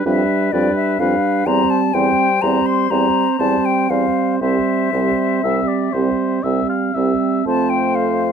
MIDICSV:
0, 0, Header, 1, 6, 480
1, 0, Start_track
1, 0, Tempo, 952381
1, 738, Time_signature, 3, 2, 24, 8
1, 1708, Tempo, 1011804
1, 4047, End_track
2, 0, Start_track
2, 0, Title_t, "Flute"
2, 0, Program_c, 0, 73
2, 30, Note_on_c, 0, 76, 48
2, 264, Note_on_c, 0, 74, 50
2, 271, Note_off_c, 0, 76, 0
2, 379, Note_off_c, 0, 74, 0
2, 382, Note_on_c, 0, 76, 47
2, 503, Note_on_c, 0, 77, 51
2, 510, Note_off_c, 0, 76, 0
2, 738, Note_on_c, 0, 82, 60
2, 746, Note_off_c, 0, 77, 0
2, 858, Note_on_c, 0, 81, 49
2, 865, Note_off_c, 0, 82, 0
2, 977, Note_on_c, 0, 79, 54
2, 984, Note_off_c, 0, 81, 0
2, 1218, Note_on_c, 0, 82, 55
2, 1226, Note_off_c, 0, 79, 0
2, 1341, Note_on_c, 0, 84, 49
2, 1349, Note_off_c, 0, 82, 0
2, 1465, Note_on_c, 0, 82, 56
2, 1473, Note_off_c, 0, 84, 0
2, 1714, Note_on_c, 0, 81, 51
2, 1721, Note_off_c, 0, 82, 0
2, 1833, Note_on_c, 0, 79, 46
2, 1840, Note_off_c, 0, 81, 0
2, 1951, Note_on_c, 0, 77, 47
2, 1958, Note_off_c, 0, 79, 0
2, 2188, Note_off_c, 0, 77, 0
2, 2190, Note_on_c, 0, 76, 52
2, 3132, Note_off_c, 0, 76, 0
2, 3638, Note_on_c, 0, 81, 45
2, 3751, Note_on_c, 0, 79, 40
2, 3758, Note_off_c, 0, 81, 0
2, 3873, Note_on_c, 0, 77, 42
2, 3880, Note_off_c, 0, 79, 0
2, 4047, Note_off_c, 0, 77, 0
2, 4047, End_track
3, 0, Start_track
3, 0, Title_t, "Oboe"
3, 0, Program_c, 1, 68
3, 30, Note_on_c, 1, 71, 32
3, 261, Note_off_c, 1, 71, 0
3, 268, Note_on_c, 1, 71, 35
3, 497, Note_off_c, 1, 71, 0
3, 502, Note_on_c, 1, 71, 35
3, 734, Note_off_c, 1, 71, 0
3, 739, Note_on_c, 1, 72, 38
3, 906, Note_off_c, 1, 72, 0
3, 976, Note_on_c, 1, 72, 38
3, 1212, Note_off_c, 1, 72, 0
3, 1218, Note_on_c, 1, 72, 38
3, 1457, Note_off_c, 1, 72, 0
3, 1462, Note_on_c, 1, 72, 35
3, 1705, Note_off_c, 1, 72, 0
3, 1707, Note_on_c, 1, 72, 35
3, 1942, Note_off_c, 1, 72, 0
3, 1949, Note_on_c, 1, 72, 32
3, 2187, Note_off_c, 1, 72, 0
3, 2196, Note_on_c, 1, 72, 37
3, 2433, Note_off_c, 1, 72, 0
3, 2438, Note_on_c, 1, 72, 31
3, 2672, Note_off_c, 1, 72, 0
3, 2679, Note_on_c, 1, 76, 39
3, 2793, Note_on_c, 1, 74, 35
3, 2800, Note_off_c, 1, 76, 0
3, 2912, Note_on_c, 1, 72, 34
3, 2919, Note_off_c, 1, 74, 0
3, 3152, Note_on_c, 1, 76, 38
3, 3159, Note_off_c, 1, 72, 0
3, 3272, Note_off_c, 1, 76, 0
3, 3276, Note_on_c, 1, 77, 38
3, 3394, Note_on_c, 1, 76, 35
3, 3401, Note_off_c, 1, 77, 0
3, 3637, Note_off_c, 1, 76, 0
3, 3643, Note_on_c, 1, 72, 33
3, 4047, Note_off_c, 1, 72, 0
3, 4047, End_track
4, 0, Start_track
4, 0, Title_t, "Clarinet"
4, 0, Program_c, 2, 71
4, 26, Note_on_c, 2, 62, 34
4, 260, Note_off_c, 2, 62, 0
4, 270, Note_on_c, 2, 62, 33
4, 495, Note_off_c, 2, 62, 0
4, 498, Note_on_c, 2, 62, 35
4, 732, Note_off_c, 2, 62, 0
4, 742, Note_on_c, 2, 60, 39
4, 974, Note_off_c, 2, 60, 0
4, 977, Note_on_c, 2, 60, 35
4, 1149, Note_off_c, 2, 60, 0
4, 1220, Note_on_c, 2, 60, 38
4, 1458, Note_off_c, 2, 60, 0
4, 1464, Note_on_c, 2, 60, 33
4, 1706, Note_off_c, 2, 60, 0
4, 1710, Note_on_c, 2, 60, 33
4, 1944, Note_off_c, 2, 60, 0
4, 1955, Note_on_c, 2, 60, 36
4, 2190, Note_off_c, 2, 60, 0
4, 2197, Note_on_c, 2, 60, 37
4, 2433, Note_off_c, 2, 60, 0
4, 2441, Note_on_c, 2, 60, 30
4, 2674, Note_off_c, 2, 60, 0
4, 2684, Note_on_c, 2, 60, 31
4, 2913, Note_off_c, 2, 60, 0
4, 2919, Note_on_c, 2, 60, 27
4, 3150, Note_off_c, 2, 60, 0
4, 3154, Note_on_c, 2, 60, 29
4, 3391, Note_off_c, 2, 60, 0
4, 3399, Note_on_c, 2, 60, 28
4, 3635, Note_off_c, 2, 60, 0
4, 3643, Note_on_c, 2, 60, 32
4, 4047, Note_off_c, 2, 60, 0
4, 4047, End_track
5, 0, Start_track
5, 0, Title_t, "French horn"
5, 0, Program_c, 3, 60
5, 28, Note_on_c, 3, 55, 35
5, 261, Note_off_c, 3, 55, 0
5, 265, Note_on_c, 3, 55, 36
5, 496, Note_off_c, 3, 55, 0
5, 506, Note_on_c, 3, 55, 34
5, 736, Note_off_c, 3, 55, 0
5, 742, Note_on_c, 3, 55, 41
5, 974, Note_off_c, 3, 55, 0
5, 980, Note_on_c, 3, 55, 36
5, 1214, Note_off_c, 3, 55, 0
5, 1221, Note_on_c, 3, 55, 35
5, 1458, Note_off_c, 3, 55, 0
5, 1461, Note_on_c, 3, 55, 37
5, 1641, Note_off_c, 3, 55, 0
5, 1714, Note_on_c, 3, 55, 35
5, 1946, Note_off_c, 3, 55, 0
5, 1952, Note_on_c, 3, 55, 30
5, 2188, Note_off_c, 3, 55, 0
5, 2192, Note_on_c, 3, 55, 33
5, 2430, Note_off_c, 3, 55, 0
5, 2434, Note_on_c, 3, 55, 29
5, 2670, Note_off_c, 3, 55, 0
5, 2672, Note_on_c, 3, 55, 29
5, 2907, Note_off_c, 3, 55, 0
5, 2910, Note_on_c, 3, 55, 29
5, 3145, Note_off_c, 3, 55, 0
5, 3150, Note_on_c, 3, 55, 29
5, 3389, Note_off_c, 3, 55, 0
5, 3391, Note_on_c, 3, 55, 29
5, 3631, Note_off_c, 3, 55, 0
5, 3637, Note_on_c, 3, 57, 30
5, 4047, Note_off_c, 3, 57, 0
5, 4047, End_track
6, 0, Start_track
6, 0, Title_t, "Bassoon"
6, 0, Program_c, 4, 70
6, 28, Note_on_c, 4, 41, 36
6, 109, Note_off_c, 4, 41, 0
6, 267, Note_on_c, 4, 41, 38
6, 348, Note_off_c, 4, 41, 0
6, 500, Note_on_c, 4, 41, 35
6, 581, Note_off_c, 4, 41, 0
6, 736, Note_on_c, 4, 40, 41
6, 817, Note_off_c, 4, 40, 0
6, 978, Note_on_c, 4, 40, 39
6, 1059, Note_off_c, 4, 40, 0
6, 1224, Note_on_c, 4, 40, 43
6, 1305, Note_off_c, 4, 40, 0
6, 1467, Note_on_c, 4, 40, 36
6, 1547, Note_off_c, 4, 40, 0
6, 1713, Note_on_c, 4, 40, 37
6, 1789, Note_off_c, 4, 40, 0
6, 1950, Note_on_c, 4, 40, 36
6, 2026, Note_off_c, 4, 40, 0
6, 2193, Note_on_c, 4, 36, 35
6, 2268, Note_off_c, 4, 36, 0
6, 2439, Note_on_c, 4, 36, 33
6, 2515, Note_off_c, 4, 36, 0
6, 2679, Note_on_c, 4, 36, 34
6, 2755, Note_off_c, 4, 36, 0
6, 2920, Note_on_c, 4, 36, 28
6, 2996, Note_off_c, 4, 36, 0
6, 3157, Note_on_c, 4, 36, 32
6, 3233, Note_off_c, 4, 36, 0
6, 3402, Note_on_c, 4, 36, 29
6, 3478, Note_off_c, 4, 36, 0
6, 3642, Note_on_c, 4, 41, 32
6, 4047, Note_off_c, 4, 41, 0
6, 4047, End_track
0, 0, End_of_file